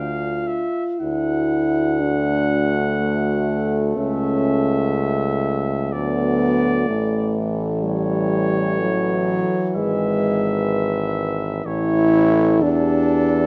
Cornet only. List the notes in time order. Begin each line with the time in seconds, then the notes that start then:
Already playing: F5
0.47 E5
1.00 F#5
3.98 E5
5.92 D5
7.84 C#5
9.76 E5
11.66 C#5
12.61 A4